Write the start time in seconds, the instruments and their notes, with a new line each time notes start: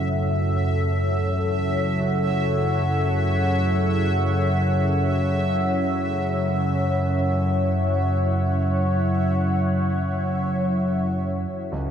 Already playing: grand piano A1, synth drone F#2 C#3, ambient pad E4 A4 C#5 F#5, synth texture E5
2.00 grand piano F#4
11.55 synth drone F#2 C#3, soft synth lead A4
11.72 grand piano C#2